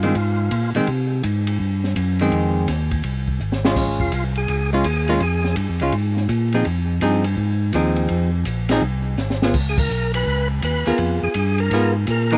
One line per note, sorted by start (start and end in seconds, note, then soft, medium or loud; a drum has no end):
0.00 0.14 G2 medium
0.00 0.14 D#3 medium
0.00 0.14 G#3 medium
0.00 0.15 C4 medium
0.00 0.70 F4 medium
0.00 ride soft
0.15 0.50 G#2 medium
0.15 kick soft
0.15 ride medium
0.51 0.73 A#2 medium
0.51 kick soft
0.51 hi-hat pedal soft
0.51 ride medium
0.75 0.81 A#2 soft
0.75 0.86 D#3 medium
0.75 0.87 G#3 medium
0.75 0.87 C4 medium
0.75 ride soft
0.87 1.22 C3 medium
0.87 kick soft
0.87 ride medium
1.23 1.59 G#2 medium
1.23 kick soft
1.23 hi-hat pedal medium
1.23 ride medium
1.47 ride medium
1.60 1.95 G2 medium
1.60 kick soft
1.84 snare soft
1.96 2.31 F#2 medium
1.96 kick soft
1.96 hi-hat pedal medium
1.96 ride medium
2.19 2.66 D#3 medium
2.19 2.66 G#3 medium
2.19 2.67 C4 medium
2.19 ride soft
2.32 2.67 F2 medium
2.32 kick soft
2.32 ride medium
2.68 3.03 D#2 medium
2.68 kick soft
2.68 snare soft
2.68 hi-hat pedal soft
2.68 ride medium
2.91 kick medium
2.91 ride soft
3.04 3.39 C2 medium
3.04 kick soft
3.04 ride medium
3.28 kick soft
3.40 3.75 G#1 medium
3.40 hi-hat pedal medium
3.52 snare medium
3.65 4.11 G#3 medium
3.65 4.11 C#4 medium
3.65 4.11 F4 medium
3.65 snare medium
3.76 3.88 A#1 medium
3.76 kick medium
3.76 snare soft
3.76 crash medium
3.88 4.00 G#1 medium
4.00 4.11 F1 medium
4.00 4.12 F4 medium
4.00 kick medium
4.12 4.47 C2 medium
4.12 4.24 F4 medium
4.12 kick soft
4.12 hi-hat pedal medium
4.12 ride medium
4.35 4.70 G#4 medium
4.35 ride soft
4.48 4.84 C#2 medium
4.48 kick soft
4.48 ride medium
4.73 4.84 G#3 medium
4.73 4.84 C#4 medium
4.73 4.84 F4 medium
4.84 5.20 D#2 medium
4.84 5.09 G#4 medium
4.84 kick soft
4.84 hi-hat pedal medium
4.84 ride medium
5.08 5.20 G#3 medium
5.08 5.20 C#4 medium
5.08 5.20 F4 medium
5.08 5.15 A#4 loud
5.08 ride soft
5.20 5.56 F2 medium
5.20 5.55 G#4 medium
5.20 kick soft
5.20 ride medium
5.44 snare soft
5.56 5.68 G2 medium
5.56 kick soft
5.56 hi-hat pedal soft
5.56 ride medium
5.69 5.81 F2 medium
5.79 5.92 C#2 medium
5.79 5.92 G#3 medium
5.79 5.92 C#4 medium
5.79 5.93 F4 medium
5.79 ride soft
5.92 6.28 G#2 medium
5.92 kick soft
5.92 ride medium
6.17 snare soft
6.29 6.64 A#2 medium
6.29 kick soft
6.29 hi-hat pedal medium
6.29 ride medium
6.52 6.65 F3 medium
6.52 6.65 C4 medium
6.52 6.65 D#4 medium
6.52 6.65 G#4 medium
6.52 ride soft
6.65 7.00 F2 medium
6.65 kick soft
6.65 ride medium
7.01 7.36 G2 medium
7.01 7.23 F3 medium
7.01 7.23 C4 medium
7.01 7.23 D#4 medium
7.01 7.23 G#4 medium
7.01 kick soft
7.01 hi-hat pedal medium
7.01 ride medium
7.24 ride medium
7.37 7.73 G#2 medium
7.37 kick soft
7.73 8.09 D#2 medium
7.73 8.29 F3 medium
7.73 8.29 C4 medium
7.73 8.29 D#4 medium
7.73 8.29 G#4 medium
7.73 kick soft
7.73 hi-hat pedal medium
7.73 ride medium
7.96 ride soft
8.09 8.45 F2 medium
8.09 kick soft
8.09 ride medium
8.45 8.81 A#1 medium
8.45 kick soft
8.45 hi-hat pedal medium
8.45 ride medium
8.69 8.81 F3 medium
8.69 8.82 C4 medium
8.69 8.82 D#4 medium
8.69 8.82 G#4 medium
8.69 snare medium
8.69 ride medium
8.82 9.17 C2 medium
8.82 kick soft
9.18 9.53 G#1 medium
9.18 snare medium
9.18 hi-hat pedal soft
9.30 snare medium
9.42 9.54 B3 medium
9.42 9.54 F4 medium
9.42 9.54 G#4 medium
9.42 snare medium
9.54 9.89 C#2 medium
9.54 kick medium
9.54 crash medium
9.69 9.78 G#4 medium
9.78 10.12 A#4 medium
9.78 kick medium
9.78 crash medium
9.90 10.25 B1 medium
9.90 hi-hat pedal medium
10.14 10.48 B4 loud
10.14 ride medium
10.26 10.61 C#2 medium
10.26 kick soft
10.62 10.85 D#2 medium
10.62 10.88 B4 loud
10.62 kick soft
10.62 hi-hat pedal medium
10.62 ride medium
10.86 10.93 D#2 soft
10.86 11.33 B3 medium
10.86 11.33 F4 medium
10.86 11.33 G#4 medium
10.86 10.99 A#4 medium
10.86 ride soft
10.98 11.20 F2 medium
10.98 kick soft
10.98 ride medium
11.22 11.29 F2 soft
11.22 11.60 G#4 medium
11.34 11.70 G2 medium
11.34 kick soft
11.34 hi-hat pedal medium
11.34 ride medium
11.58 11.93 A#4 loud
11.58 ride soft
11.71 12.06 G#2 medium
11.71 11.93 B3 medium
11.71 11.94 F4 medium
11.71 11.94 G#4 medium
11.71 kick soft
11.71 ride medium
12.07 12.38 A#2 medium
12.07 12.33 A#4 medium
12.07 kick soft
12.07 hi-hat pedal medium
12.07 ride medium
12.30 12.38 E3 medium
12.30 12.38 A#3 medium
12.30 12.38 D#4 medium
12.30 12.38 G#4 medium
12.30 ride soft